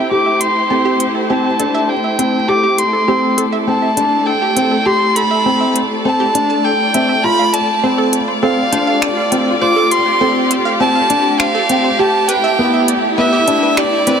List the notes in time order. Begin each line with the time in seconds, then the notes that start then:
Already playing: A3 E4 G4 C5 G5
0.11 G4 D6
0.26 E5
0.40 C5 C6, closed hi-hat
0.70 C4 A4
0.85 G4
1.00 closed hi-hat
1.15 A4
1.29 C4 G4 A5
1.59 D4 A4, closed hi-hat
1.74 E5
1.89 G5
2.04 E5
2.19 C4 C5, closed hi-hat
2.48 G4 A4 D6
2.63 G4
2.78 C6, closed hi-hat
2.83 A4
2.93 A4
3.08 C4 G4
3.38 A4 D5, closed hi-hat
3.52 E5
3.67 C4 A5
3.82 E5
3.97 D4 C5, closed hi-hat
4.26 A4 G5
4.42 G4
4.56 C4, closed hi-hat
4.71 A4
4.85 G4 C6
5.15 A4 B5, closed hi-hat
5.31 E5
5.46 C4
5.61 E5
5.76 C5, closed hi-hat
6.05 C4 A4 A5
6.20 G4
6.35 D4, closed hi-hat
6.50 A5
6.64 A4 G5
6.94 C4 E5, closed hi-hat
7.09 E5
7.24 F4 B5
7.39 F5
7.54 D5 A5, closed hi-hat
7.83 C4 C5
7.93 F4
7.98 A4
8.13 closed hi-hat
8.28 C5
8.42 C4 A4 F5
8.61 G4
8.72 D4 C5, closed hi-hat
8.87 F5
9.02 D5, finger snap
9.17 F5
9.32 C4 D5, closed hi-hat
9.61 F4 C5 D6
9.76 A4
9.91 C6, closed hi-hat
10.06 C5
10.21 C4 A4
10.50 C5, closed hi-hat
10.65 F5
10.80 C4 A5
10.95 F5
11.10 D4 D5, closed hi-hat
11.40 C5 F5, finger snap
11.55 A4
11.69 C4, closed hi-hat
11.84 C5
11.99 G4 A5
12.28 B4 G5, closed hi-hat
12.35 E4
12.44 E5
12.59 B3
12.73 E5
12.88 D5, closed hi-hat
13.17 B3 B4 E5
13.33 G4
13.48 D4, closed hi-hat
13.63 B4
13.77 G4 D5, finger snap
14.07 C4 B4, closed hi-hat